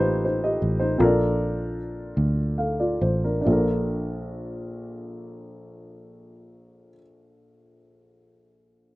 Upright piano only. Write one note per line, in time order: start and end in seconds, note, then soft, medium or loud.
0.00 0.25 D#4 medium
0.00 0.99 F4 medium
0.00 0.44 G4 medium
0.00 1.00 A4 medium
0.00 1.01 B4 medium
0.00 0.23 C5 medium
0.25 0.43 D#4 soft
0.25 0.42 C5 medium
0.44 0.79 G4 soft
0.44 0.79 D#5 medium
0.80 1.16 D#4 medium
0.80 1.16 C5 medium
0.98 2.13 A#2 medium
0.98 1.06 C4 medium
0.98 1.76 F4 medium
0.98 1.77 A4 medium
0.98 1.77 A#4 medium
1.05 1.79 D4 medium
2.58 2.78 A4 soft
2.58 2.78 F5 soft
2.80 3.00 F4 soft
2.80 3.00 D5 medium
3.02 3.22 C5 soft
3.24 3.40 D4 soft
3.24 3.50 A#4 medium
3.41 6.89 D4 medium
3.41 6.93 F4 medium
3.46 6.94 A#1 medium
3.46 6.96 A4 medium
3.52 7.00 A#4 medium